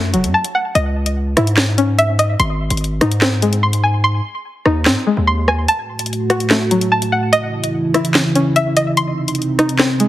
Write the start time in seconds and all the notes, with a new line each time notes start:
Already playing: F#2 A3 F#4 A5
0.13 E1 F#3, closed hi-hat
0.24 F#2, closed hi-hat
0.34 A5
0.45 closed hi-hat
0.55 F#5
0.75 C#2 D#5, closed hi-hat
1.06 closed hi-hat
1.37 G#2 E4, cross-stick, closed hi-hat
1.47 closed hi-hat
1.57 snare, clap
1.78 C#4, closed hi-hat
1.98 E5, closed hi-hat
2.19 D#5, closed hi-hat
2.40 G#1 C6, closed hi-hat
2.70 G#1, closed hi-hat
2.77 closed hi-hat
2.84 closed hi-hat
3.01 G#2 D#4, cross-stick, closed hi-hat
3.12 closed hi-hat
3.21 C4, snare, clap
3.42 G#3, closed hi-hat
3.53 closed hi-hat
3.63 C6
3.73 closed hi-hat
3.84 G#5
4.04 C6
4.66 D#2 D#4, cross-stick
4.85 G#2 C4, snare, clap
5.07 G#3
5.17 D#2
5.27 C6
5.48 G#5, cross-stick
5.68 A2 A3 F#4 A5, closed hi-hat
5.99 closed hi-hat
6.06 closed hi-hat
6.13 closed hi-hat
6.30 F#4, cross-stick, closed hi-hat
6.40 closed hi-hat
6.50 A3, snare, clap
6.71 F#3, closed hi-hat
6.81 closed hi-hat
6.92 A5
7.02 closed hi-hat
7.12 F#5
7.33 C#3 E3 E4 D#5, closed hi-hat
7.64 closed hi-hat
7.94 E4, cross-stick, closed hi-hat
8.05 closed hi-hat
8.14 snare, clap
8.35 C#4, closed hi-hat
8.56 E5, closed hi-hat
8.77 D#5, closed hi-hat
8.97 C3 C4 D#4 C6, closed hi-hat
9.28 closed hi-hat
9.35 closed hi-hat
9.42 closed hi-hat
9.59 D#4, cross-stick, closed hi-hat
9.69 closed hi-hat
9.79 C4, snare, clap
10.00 G#3, closed hi-hat